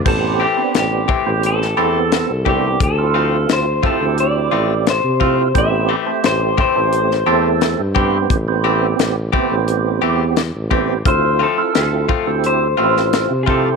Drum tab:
CC |x---------------|----------------|----------------|----------------|
HH |----x---x---x---|x---x---x---x---|x---x---x---x---|x---x---x---x---|
SD |----o----o--o---|----o-------o---|----o----o--o---|----o-------o---|
BD |o-----o-------o-|o-----o-------o-|o-----o-------o-|o-----o-------o-|

CC |----------------|
HH |x---x---x---x---|
SD |----o------oo---|
BD |o-----o-------o-|